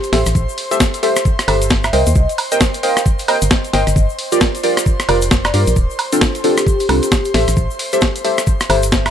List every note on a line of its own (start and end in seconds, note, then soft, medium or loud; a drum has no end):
0.00 3.95 C5 medium
0.00 3.95 C6 medium
0.00 closed hi-hat soft
0.00 shaker soft
0.13 0.24 A1 loud
0.13 0.21 G4 medium
0.13 0.21 A4 medium
0.13 0.21 C5 medium
0.13 0.21 E5 loud
0.13 snare medium
0.13 open hi-hat loud
0.26 0.34 A1 medium
0.26 cross-stick soft
0.26 closed hi-hat medium
0.26 shaker medium
0.35 0.47 A1 loud
0.35 kick loud
0.35 shaker medium
0.49 shaker soft
0.58 open hi-hat loud
0.71 0.80 G4 loud
0.71 0.80 A4 medium
0.71 0.80 C5 medium
0.71 0.80 E5 loud
0.71 closed hi-hat medium
0.71 shaker medium
0.80 kick loud
0.80 snare loud
0.80 shaker medium
0.94 closed hi-hat soft
0.94 shaker soft
1.03 1.17 G4 medium
1.03 1.17 A4 medium
1.03 1.17 C5 medium
1.03 1.17 E5 loud
1.03 open hi-hat loud
1.16 cross-stick medium
1.16 closed hi-hat medium
1.16 shaker medium
1.25 kick loud
1.25 shaker medium
1.39 cross-stick medium
1.39 closed hi-hat medium
1.39 shaker soft
1.48 1.91 G1 medium
1.48 1.57 G4 medium
1.48 1.57 A4 medium
1.48 1.57 C5 medium
1.48 1.57 E5 loud
1.48 open hi-hat loud
1.48 high woodblock medium
1.62 closed hi-hat medium
1.62 shaker medium
1.70 kick loud
1.70 snare loud
1.70 shaker medium
1.84 1.91 E5 medium
1.84 cross-stick medium
1.84 closed hi-hat soft
1.84 high woodblock medium
1.84 shaker soft
1.93 2.05 C2 medium
1.93 2.02 A#4 medium
1.93 2.02 C5 medium
1.93 2.10 D#5 medium
1.93 2.02 D#5 medium
1.93 2.02 G5 loud
1.93 open hi-hat loud
2.06 2.14 D#2 medium
2.06 closed hi-hat medium
2.06 shaker medium
2.15 2.27 C2 medium
2.15 2.32 D#5 medium
2.15 kick loud
2.15 shaker medium
2.29 closed hi-hat soft
2.29 shaker soft
2.38 open hi-hat loud
2.38 high woodblock medium
2.52 2.61 A#4 loud
2.52 2.61 C5 medium
2.52 2.61 D#5 medium
2.52 2.61 G5 loud
2.52 closed hi-hat medium
2.52 shaker medium
2.61 kick loud
2.61 snare loud
2.61 shaker medium
2.74 closed hi-hat medium
2.74 shaker soft
2.83 2.97 A#4 loud
2.83 2.97 C5 medium
2.83 2.97 D#5 medium
2.83 3.00 F5 medium
2.83 2.97 G5 loud
2.83 open hi-hat loud
2.97 cross-stick medium
2.97 closed hi-hat medium
2.97 shaker medium
3.06 kick loud
3.06 shaker medium
3.19 open hi-hat medium
3.19 shaker soft
3.28 3.37 A#4 loud
3.28 3.37 C5 medium
3.28 3.37 D#5 medium
3.28 3.37 G5 loud
3.28 open hi-hat loud
3.28 high woodblock medium
3.42 3.50 G1 medium
3.42 closed hi-hat medium
3.42 shaker medium
3.51 kick loud
3.51 snare loud
3.51 shaker medium
3.64 closed hi-hat soft
3.64 shaker soft
3.73 3.85 G1 medium
3.73 3.82 A#4 medium
3.73 3.82 C5 medium
3.73 3.82 D#5 medium
3.73 4.01 D#5 medium
3.73 3.82 G5 loud
3.73 snare medium
3.73 open hi-hat loud
3.87 3.95 G1 medium
3.87 cross-stick soft
3.87 closed hi-hat medium
3.87 shaker medium
3.96 4.08 G1 loud
3.96 9.10 C5 medium
3.96 9.10 C6 medium
3.96 kick loud
3.96 shaker medium
4.09 shaker soft
4.19 open hi-hat medium
4.32 4.41 F4 loud
4.32 4.41 G4 medium
4.32 4.41 A#4 medium
4.32 4.41 D5 loud
4.32 closed hi-hat medium
4.32 shaker medium
4.41 kick loud
4.41 snare loud
4.41 shaker medium
4.55 closed hi-hat medium
4.55 shaker soft
4.63 4.77 F4 medium
4.63 4.77 G4 medium
4.63 4.77 A#4 medium
4.63 4.77 D5 loud
4.63 open hi-hat loud
4.77 cross-stick medium
4.77 closed hi-hat medium
4.77 shaker medium
4.86 kick loud
4.86 shaker medium
5.00 cross-stick medium
5.00 closed hi-hat medium
5.00 shaker soft
5.09 5.52 F1 medium
5.09 5.17 F4 medium
5.09 5.17 G4 medium
5.09 5.17 A#4 medium
5.09 5.17 D5 loud
5.09 open hi-hat loud
5.09 high woodblock medium
5.22 closed hi-hat medium
5.22 shaker medium
5.31 kick loud
5.31 snare loud
5.31 shaker medium
5.45 5.52 D5 medium
5.45 cross-stick medium
5.45 closed hi-hat soft
5.45 high woodblock medium
5.45 shaker soft
5.54 5.65 G2 medium
5.54 5.62 F4 medium
5.54 5.62 G4 medium
5.54 5.62 A#4 medium
5.54 5.71 A#4 medium
5.54 5.62 D5 loud
5.54 open hi-hat loud
5.67 5.75 A#1 medium
5.67 closed hi-hat medium
5.67 shaker medium
5.76 5.88 D1 loud
5.76 kick loud
5.76 shaker medium
5.90 shaker soft
5.99 open hi-hat loud
5.99 high woodblock medium
6.12 6.22 C4 loud
6.12 6.22 D4 medium
6.12 6.22 F4 loud
6.12 6.22 A4 loud
6.12 closed hi-hat medium
6.12 shaker medium
6.21 kick loud
6.21 snare loud
6.21 shaker medium
6.35 closed hi-hat medium
6.35 shaker soft
6.44 6.58 C4 loud
6.44 6.58 D4 medium
6.44 6.58 F4 medium
6.44 6.53 G4 medium
6.44 6.58 A4 loud
6.44 open hi-hat loud
6.58 6.64 G4 medium
6.58 cross-stick medium
6.58 closed hi-hat medium
6.58 shaker medium
6.67 6.75 G4 medium
6.67 kick loud
6.67 shaker medium
6.80 6.86 G4 medium
6.80 open hi-hat medium
6.80 shaker soft
6.89 7.01 C2 medium
6.89 6.98 C4 loud
6.89 6.98 D4 medium
6.89 6.98 F4 medium
6.89 6.98 A4 loud
6.89 open hi-hat loud
6.89 high woodblock medium
7.03 7.09 G4 medium
7.03 closed hi-hat medium
7.03 shaker medium
7.12 kick loud
7.12 snare loud
7.12 shaker medium
7.25 closed hi-hat soft
7.25 shaker soft
7.34 7.46 A1 loud
7.34 7.43 G4 medium
7.34 7.43 A4 medium
7.34 7.43 C5 medium
7.34 7.43 E5 loud
7.34 snare medium
7.34 open hi-hat loud
7.48 7.56 A1 medium
7.48 cross-stick soft
7.48 closed hi-hat medium
7.48 shaker medium
7.57 7.68 A1 medium
7.57 kick loud
7.57 shaker medium
7.71 shaker soft
7.79 open hi-hat loud
7.93 8.02 G4 loud
7.93 8.02 A4 medium
7.93 8.02 C5 medium
7.93 8.02 E5 loud
7.93 closed hi-hat medium
7.93 shaker medium
8.01 kick loud
8.01 snare loud
8.01 shaker medium
8.16 closed hi-hat medium
8.16 shaker soft
8.24 8.38 G4 medium
8.24 8.38 A4 medium
8.24 8.38 C5 medium
8.24 8.38 E5 loud
8.24 open hi-hat loud
8.38 cross-stick medium
8.38 closed hi-hat medium
8.38 shaker medium
8.47 kick loud
8.47 shaker medium
8.60 cross-stick medium
8.60 closed hi-hat medium
8.60 shaker soft
8.70 9.10 G1 medium
8.70 8.78 G4 loud
8.70 8.78 A4 medium
8.70 8.78 C5 medium
8.70 8.78 E5 loud
8.70 open hi-hat loud
8.70 high woodblock medium
8.83 closed hi-hat medium
8.83 shaker medium
8.92 kick loud
8.92 snare loud
8.92 shaker medium
9.06 9.10 E5 medium
9.06 cross-stick medium
9.06 closed hi-hat soft
9.06 high woodblock medium
9.06 shaker soft